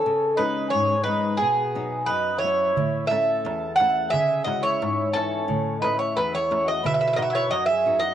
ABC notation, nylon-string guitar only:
X:1
M:2/4
L:1/8
Q:1/4=88
K:C#m
V:1 name="Nylon-string guitar"
C, [G,CD] G,, [G,CD] | B,, [F,B,D] F,, [F,B,d] | A,, [A,CE] E,, [A,CE] | C, [G,CE] G,, [E,CE] |
A,, [A,CE] E,, [A,CE] | B,, [B,DF] F,, [B,DF] |]